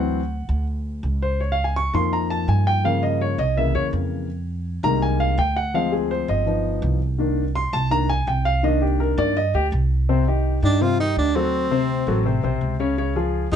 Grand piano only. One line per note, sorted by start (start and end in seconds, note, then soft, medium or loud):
0.00 0.19 E3 medium
0.00 0.19 F#3 soft
0.00 0.20 C4 medium
0.00 0.64 F#5 medium
1.22 1.40 C5 medium
1.40 1.52 C#5 medium
1.52 1.64 F5 medium
1.64 1.76 G#5 medium
1.76 1.94 C#6 loud
1.94 2.81 D#3 medium
1.94 2.81 F3 medium
1.94 2.81 A#3 medium
1.94 2.12 C6 medium
2.13 2.30 A#5 medium
2.30 2.48 A5 medium
2.49 2.66 G#5 medium
2.67 2.84 G5 medium
2.84 3.36 C#3 medium
2.84 3.36 F3 soft
2.84 3.37 A#3 medium
2.84 3.02 F5 medium
3.03 3.20 D#5 medium
3.21 3.39 C#5 medium
3.39 3.57 D#5 medium
3.57 4.26 C#3 medium
3.57 4.26 E3 soft
3.57 4.26 A#3 medium
3.57 3.75 E5 medium
3.75 3.86 C#5 medium
4.83 5.35 D#3 medium
4.83 5.35 G3 soft
4.83 5.36 G#3 soft
4.83 5.36 A#3 medium
4.83 5.02 A#5 loud
5.02 5.20 G#5 medium
5.20 5.38 F5 medium
5.39 5.56 G5 medium
5.57 5.74 F#5 medium
5.74 6.43 F3 medium
5.74 6.43 G#3 medium
5.74 6.44 C4 medium
5.74 5.92 F5 medium
5.92 6.10 G#4 medium
6.11 6.28 C5 medium
6.29 6.79 D#5 medium
6.46 6.98 F3 medium
6.46 6.98 B3 soft
6.46 6.99 D#4 medium
7.18 7.43 D#3 medium
7.18 7.43 A#3 soft
7.18 7.43 D4 medium
7.55 7.73 C6 loud
7.73 7.91 A5 loud
7.91 8.07 D#3 soft
7.91 8.07 A#3 soft
7.91 8.08 D4 medium
7.91 8.09 A#5 loud
8.10 8.27 G#5 loud
8.28 8.45 G5 medium
8.45 8.63 F5 loud
8.63 9.17 D#3 medium
8.63 9.17 A#3 soft
8.63 9.17 D4 medium
8.63 8.81 D#5 medium
8.82 8.99 G4 medium
9.00 9.17 A#4 medium
9.18 9.34 D#3 medium
9.18 9.34 A#3 soft
9.18 9.35 D4 medium
9.18 9.36 D5 medium
9.37 9.54 D#5 loud
9.55 9.65 G4 medium
10.09 10.24 C3 medium
10.09 10.24 C4 medium
10.09 10.24 C5 medium
10.27 10.57 D#3 medium
10.27 10.57 D#4 medium
10.27 10.57 G4 medium
10.63 10.78 D#3 medium
10.63 10.78 D#4 medium
10.63 10.78 G4 medium
10.81 10.96 C3 medium
10.81 10.96 C4 medium
10.81 10.96 C5 medium
10.99 11.29 D#3 medium
10.99 11.29 D#4 medium
10.99 11.29 G4 medium
11.36 11.65 F#3 medium
11.36 11.65 F#4 medium
11.36 11.65 A4 medium
11.71 12.01 C3 medium
11.71 12.01 C4 medium
11.71 12.01 C5 medium
12.07 12.22 F#3 medium
12.07 12.23 F#4 medium
12.07 12.23 A4 medium
12.25 12.40 C3 medium
12.25 12.41 C4 medium
12.25 12.41 C5 medium
12.43 12.73 C3 medium
12.43 12.73 C4 medium
12.43 12.74 C5 medium
12.80 12.95 C#3 medium
12.80 12.95 C#4 medium
12.80 12.95 C#5 medium
12.98 13.13 C#3 medium
12.98 13.13 C#4 medium
12.98 13.13 C#5 medium
13.16 13.45 F3 medium
13.16 13.46 F4 medium
13.16 13.46 G#4 medium
13.52 13.56 F3 medium
13.52 13.56 F4 medium
13.52 13.56 G#4 medium